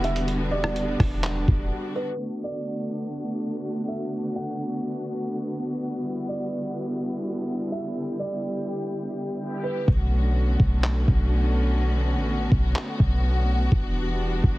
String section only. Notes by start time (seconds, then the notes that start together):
Already playing: D3 G3 B3 E4 F#4
0.28 D4
2.20 D3 A3 B3 D4 F#4
6.04 D3 G3 E4
7.96 G4
9.88 D3 A3 B3 C#4 F#4
13.72 E3 G3 D4